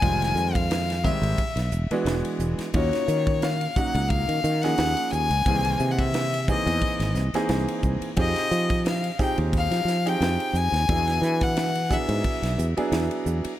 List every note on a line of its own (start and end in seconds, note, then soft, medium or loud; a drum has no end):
0.00 0.31 F1 medium
0.00 0.93 D#3 medium
0.00 0.93 G3 medium
0.00 0.93 G#3 medium
0.00 0.93 C4 medium
0.00 0.94 F4 medium
0.00 0.56 G#5 loud
0.00 kick medium
0.00 ride medium
0.22 snare soft
0.22 ride medium
0.35 1.09 F2 medium
0.35 hi-hat pedal medium
0.54 1.06 F5 medium
0.54 kick medium
0.54 ride medium
0.71 snare loud
0.71 ride medium
0.90 snare soft
0.90 ride medium
1.03 1.38 D#3 medium
1.03 1.38 G3 medium
1.03 1.38 G#3 medium
1.03 1.38 C4 medium
1.03 1.38 G4 medium
1.03 1.72 E5 medium
1.03 kick medium
1.03 hi-hat pedal medium
1.22 1.35 G#1 loud
1.22 ride medium
1.38 kick medium
1.38 ride medium
1.56 1.69 B1 medium
1.56 snare soft
1.56 ride medium
1.72 1.88 E1 medium
1.72 hi-hat pedal medium
1.91 2.65 E3 loud
1.91 2.65 G#3 medium
1.91 2.66 B3 medium
1.91 2.66 D4 medium
1.91 2.66 F#4 loud
1.91 ride medium
2.05 2.21 E1 medium
2.05 snare medium
2.05 ride medium
2.25 ride medium
2.39 2.56 E1 medium
2.39 hi-hat pedal medium
2.59 muted fretless electric bass stroke soft
2.59 snare soft
2.59 ride medium
2.74 2.90 D#2 medium
2.74 3.66 A#3 medium
2.74 3.66 C#4 medium
2.74 3.66 D#4 medium
2.74 3.66 F4 medium
2.74 3.66 F#4 medium
2.74 3.44 C#5 medium
2.74 kick medium
2.74 ride medium
2.93 snare soft
2.93 ride medium
3.08 3.66 D#3 medium
3.08 hi-hat pedal medium
3.27 kick medium
3.27 ride medium
3.42 3.78 F5 medium
3.42 snare loud
3.42 ride medium
3.61 ride medium
3.76 4.52 F#3 medium
3.76 4.52 A#3 medium
3.76 4.52 C#4 medium
3.76 4.52 D#4 medium
3.76 4.52 F#4 medium
3.76 4.10 F#5 medium
3.76 muted fretless electric bass stroke soft
3.76 kick medium
3.76 hi-hat pedal medium
3.95 4.24 C#2 loud
3.95 ride medium
4.09 4.63 F5 loud
4.09 kick medium
4.09 ride medium
4.28 4.41 D#3 medium
4.28 ride medium
4.44 4.73 D#3 medium
4.44 hi-hat pedal medium
4.62 5.37 F3 medium
4.62 5.37 A#3 medium
4.62 5.37 C#4 medium
4.62 5.38 D#4 medium
4.62 5.38 G#4 medium
4.62 5.12 F#5 loud
4.62 snare soft
4.62 ride medium
4.78 4.94 D#2 medium
4.78 snare medium
4.78 ride medium
4.97 ride medium
5.11 5.28 D#2 medium
5.11 5.92 G#5 loud
5.11 hi-hat pedal medium
5.30 5.43 C#2 medium
5.30 ride medium
5.46 5.75 C2 medium
5.46 6.38 D#3 medium
5.46 6.38 E3 medium
5.46 6.38 A#3 medium
5.46 6.38 C4 medium
5.46 6.38 G#4 medium
5.46 kick medium
5.46 ride medium
5.65 ride medium
5.80 6.54 C3 medium
5.80 hi-hat pedal medium
5.91 6.00 F#5 medium
5.99 6.48 E5 medium
5.99 kick medium
5.99 ride medium
6.14 snare loud
6.14 ride medium
6.34 ride medium
6.48 7.23 E3 medium
6.48 7.23 A#3 medium
6.48 7.24 C4 medium
6.48 7.24 D#4 medium
6.48 7.24 G#4 medium
6.48 7.13 D#5 medium
6.48 kick medium
6.48 hi-hat pedal medium
6.66 6.79 E2 loud
6.66 ride medium
6.81 muted fretless electric bass stroke soft
6.81 kick medium
6.81 ride medium
7.00 7.13 G#1 medium
7.00 snare soft
7.00 ride medium
7.15 7.31 C2 medium
7.15 snare soft
7.15 hi-hat pedal medium
7.34 8.09 E3 medium
7.34 8.09 A#3 medium
7.34 8.09 C4 medium
7.34 8.09 D#4 medium
7.34 8.09 G#4 loud
7.34 snare soft
7.34 ride medium
7.49 7.65 C2 medium
7.49 snare loud
7.49 ride medium
7.68 ride medium
7.83 7.99 C2 medium
7.83 kick medium
7.83 hi-hat pedal medium
8.01 muted fretless electric bass stroke soft
8.01 ride medium
8.17 8.33 F2 medium
8.17 9.08 C4 medium
8.17 9.08 D#4 medium
8.17 9.08 F4 medium
8.17 9.08 G4 medium
8.17 9.08 G#4 medium
8.17 8.82 D#5 loud
8.17 kick loud
8.17 ride medium
8.36 snare soft
8.36 ride medium
8.51 9.09 F3 medium
8.51 hi-hat pedal medium
8.70 kick medium
8.70 ride medium
8.86 9.18 F5 medium
8.86 snare loud
8.86 ride medium
9.04 ride medium
9.19 9.95 C4 medium
9.19 9.95 D#4 medium
9.19 9.95 F4 medium
9.19 9.95 G4 medium
9.19 9.95 G#4 medium
9.19 9.37 G5 medium
9.19 muted fretless electric bass stroke soft
9.19 kick medium
9.19 hi-hat pedal medium
9.38 9.67 D#2 loud
9.38 ride medium
9.53 kick medium
9.53 ride medium
9.57 10.10 F5 loud
9.71 9.84 F3 medium
9.71 snare soft
9.71 ride medium
9.85 10.15 F3 medium
9.85 hi-hat pedal medium
9.89 snare soft
10.05 10.80 C4 medium
10.05 10.80 D#4 medium
10.05 10.80 F4 medium
10.05 10.80 G4 medium
10.05 10.80 G#4 medium
10.05 10.57 G5 medium
10.05 ride medium
10.20 10.37 F2 medium
10.20 snare medium
10.20 ride medium
10.40 ride medium
10.53 10.70 F2 medium
10.53 11.44 G#5 loud
10.53 hi-hat pedal medium
10.72 10.86 D#2 medium
10.72 snare soft
10.72 ride medium
10.88 11.18 E2 loud
10.88 11.80 F#3 medium
10.88 11.80 B3 medium
10.88 11.80 D4 medium
10.88 11.80 E4 medium
10.88 11.80 G#4 medium
10.88 kick loud
10.88 ride medium
11.07 snare soft
11.07 ride medium
11.22 11.96 E3 loud
11.22 hi-hat pedal medium
11.41 11.94 F#5 medium
11.41 kick medium
11.41 ride medium
11.57 snare loud
11.57 ride medium
11.75 ride medium
11.89 12.66 F#3 medium
11.89 12.66 B3 medium
11.89 12.66 D4 medium
11.89 12.66 E4 medium
11.89 12.66 G#4 medium
11.89 12.59 E5 medium
11.89 kick medium
11.89 hi-hat pedal medium
12.09 12.22 G#2 loud
12.09 ride medium
12.24 kick medium
12.24 ride medium
12.42 12.56 B1 medium
12.42 snare soft
12.42 ride medium
12.58 12.74 E2 medium
12.58 hi-hat pedal medium
12.77 13.51 F#3 loud
12.77 13.51 B3 medium
12.77 13.51 D4 medium
12.77 13.51 E4 medium
12.77 13.51 G#4 loud
12.77 muted fretless electric bass stroke soft
12.77 ride medium
12.92 13.08 E2 medium
12.92 snare loud
12.92 ride medium
13.11 ride medium
13.26 13.42 E2 medium
13.26 hi-hat pedal medium
13.45 muted fretless electric bass stroke soft
13.45 ride medium